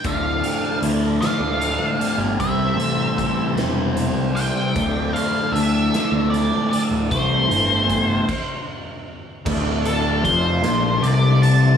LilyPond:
<<
  \new Staff \with { instrumentName = "Lead electric guitar" } { \time 6/8 \key d \minor \tempo 4. = 51 f''4 r8 f''4. | e''4. r4 g''8~ | g''8 f''8 e''4 d''8 d''8 | c''2 r4 |
r8 a'8 c''4 d''8 a''8 | }
  \new Staff \with { instrumentName = "Tonewheel organ" } { \time 6/8 \key d \minor << { <f d' d''>2. | <e c' c''>2. | <f d' d''>2. | <e c' c''>4. r4. |
<e d' d''>2. | } \\ { a'2. | g'2. | a'2.~ | a'4. r4. |
a'2. | } >> }
  \new Staff \with { instrumentName = "Tonewheel organ" } { \time 6/8 \key d \minor a2.~ | a2.~ | a2.~ | a4. r4. |
a2. | }
  \new Staff \with { instrumentName = "Distorted electric guitar" } { \clef bass \time 6/8 \key d \minor <d, a, d>8 <a, d>8 <d, a, d>8 <d, a, d>4 <a, d>8 | <c g c'>8 <g c'>8 <c g c'>8 <c g c'>4 <g c'>8 | <d, a, d>8 <a, d>8 <d, a, d>8 <d, a, d>4 <a, d>8 | <a, e a>8 <e a>8 <a, e a>8 r4. |
d,4 f,8 bes,8 c4 | }
  \new Staff \with { instrumentName = "Picked electric bass" } { \clef bass \time 6/8 \key d \minor d,,8 r8 d,8 r16 d,8 r8 g,,16 | c,8 a,,4 e,,8. c,8 r16 | d,,8 r8 d,8 r16 d,8 r8 d,,16 | c,8 g,,4 r4. |
d,,4 f,,8 bes,,8 c,4 | }
  \new DrumStaff \with { instrumentName = "Drums" } \drummode { \time 6/8 <hh bd>8 hh8 hh8 <hh sn>8 hh8 hh8 | <hh bd>8 hh8 <hh bd>8 <hh sn>8 hh8 hh8 | <hh bd>8 hh8 hh8 <hh sn>8 hh8 hh8 | <hh bd>8 hh8 <hh bd>8 <cymc bd>4. |
<cymc bd>8 hh8 <hh bd>8 <hh sn>8 hh8 hh8 | }
>>